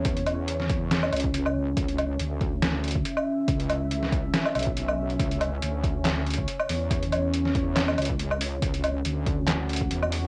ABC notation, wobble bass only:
X:1
M:4/4
L:1/8
Q:"Swing 16ths" 1/4=140
K:C#phr
V:1 name="Wobble bass" clef=bass
E,,4- E,, C,,3 | C,,2 D,,4 z2 | C,,4 z B,,,3 | C,,2 D,,4 z E,,- |
E,,4- E,, C,,3 | C,,2 D,,4 E,,2 |]